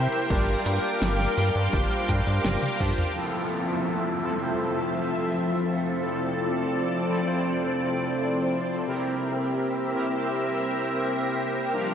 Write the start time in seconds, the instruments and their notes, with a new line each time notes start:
Already playing: analog polysynth C3 C4 E4 G4 C5, string machine A#4 E5 G5 C6
0.12 closed hi-hat
0.30 analog synth bass G1, analog polysynth G3 D4 F4 G4 A#4, string machine F5 D6, kick, closed hi-hat
0.48 closed hi-hat
0.66 analog synth bass G2, closed hi-hat
0.84 closed hi-hat
1.02 analog synth bass G1, snare, closed hi-hat
1.20 snare, closed hi-hat
1.37 analog synth bass G2, analog polysynth G3 D4 F4 G4 A#4, closed hi-hat
1.55 analog synth bass G2, analog polysynth G3 D4 F4 G4 C5, closed hi-hat
1.73 analog synth bass G1, kick, closed hi-hat
1.91 closed hi-hat
2.09 analog synth bass G2, kick, closed hi-hat
2.27 analog synth bass G2, closed hi-hat
2.45 analog synth bass G1, snare, closed hi-hat, high tom
2.63 closed hi-hat, high tom
2.80 analog synth bass G2, analog polysynth D4 F4 G4 C5, kick, open hi-hat
2.98 closed hi-hat, mid tom
3.16 string machine F3 C4 A4 E5, analog polysynth F3 C4 E4 F4 A4, closed hi-hat, downlifter
3.52 closed hi-hat
3.87 closed hi-hat
4.23 analog polysynth F3 C4 E4 F4 A4, closed hi-hat
4.41 analog polysynth F3 C4 E4 F4 C5, closed hi-hat
4.59 closed hi-hat
4.77 closed hi-hat
4.95 closed hi-hat
5.30 closed hi-hat
5.48 closed hi-hat
5.66 closed hi-hat
6.02 analog polysynth F3 C4 E4 F4 A4, string machine D5, closed hi-hat
6.20 closed hi-hat
6.37 closed hi-hat
6.73 closed hi-hat
7.09 analog polysynth F3 C4 E4 F4 A4, closed hi-hat
7.27 analog polysynth F3 C4 E4 F4 C5
7.45 closed hi-hat
7.81 closed hi-hat
8.16 closed hi-hat
8.52 closed hi-hat
8.70 closed hi-hat
8.87 analog polysynth C3 C4 E4 G4 A#4, string machine G4 A#4 E5, closed hi-hat
9.23 closed hi-hat
9.59 closed hi-hat
9.95 analog polysynth C3 C4 E4 G4 A#4, closed hi-hat
10.13 analog polysynth C3 C4 E4 G4 C5
10.66 closed hi-hat
11.02 closed hi-hat
11.37 closed hi-hat
11.73 string machine F3 D4 F5, analog polysynth G3 D4 F4 G4 A#4, closed hi-hat